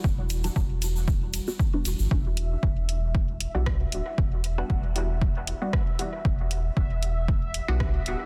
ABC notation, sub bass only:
X:1
M:4/4
L:1/16
Q:"Swing 16ths" 1/4=116
K:Em
V:1 name="Sub bass" clef=bass
E,,,3 z E,,,6 z4 E,,, G,,, | E,,,3 z E,,,6 z B,,,2 z D,,, z | E,,,3 z E,,,6 z6 | E,,,3 z E,,,6 z B,,,2 z D,,, z |]